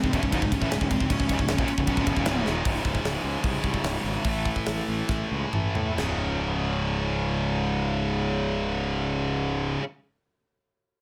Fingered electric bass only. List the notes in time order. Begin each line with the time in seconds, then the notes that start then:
0.03 C#1
0.13 E1
0.23 C#1
0.33 C#1
0.42 C#1
0.52 C#1
0.62 A1
0.70 C#1
0.81 C#1
0.91 C#1
1.01 C#1
1.10 C#1
1.20 C#1
1.30 C#1
1.39 C#1
1.49 C#1
1.58 D#1
1.68 muted fingered electric bass stroke
1.78 C#1
1.87 B1
1.97 C#1
2.07 E1
2.16 D#1
2.28 C#1
2.47 D#1
2.65 C#1
2.85 C#1
3.05 C#1
3.24 C#2
3.44 C2
3.64 C2
3.83 C#1
4.04 G#1
4.25 A1
4.67 A1
4.88 A1
5.09 A1
5.31 C#2
5.53 A1
5.76 A2
5.98 C#1